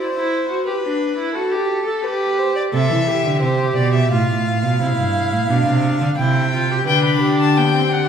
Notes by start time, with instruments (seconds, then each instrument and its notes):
Already playing: violin C5
0.14 viola E4
0.49 viola F#4
0.66 viola G4, violin B4
0.84 viola D4
1.18 viola E4
1.35 viola F#4, violin A4
1.51 viola G4
1.87 viola A4
2.04 viola G4, violin B4
2.38 violin C5
2.56 violin D5
2.73 cello C3, viola A4, violin E5
2.90 cello E3
3.07 viola G4
3.25 cello D3
3.42 cello C3, violin C5
3.76 cello B2, violin D5
3.94 violin E5
4.11 cello A2, viola F4, violin F5
4.28 cello A2
4.63 cello B2
4.80 cello C3, viola E4
4.97 cello G2
5.32 cello A2
5.49 cello B2, viola D4
5.66 cello C3
6.01 cello D3
6.18 cello C3, viola E4, violin G5
6.53 viola F4
6.71 viola G4
6.87 cello D3, viola D4, violin B4 G5
7.04 violin B5
7.22 cello D3, violin G4
7.40 violin A5
7.57 viola B3, violin G5
7.74 viola C4
7.92 viola D4, violin F#5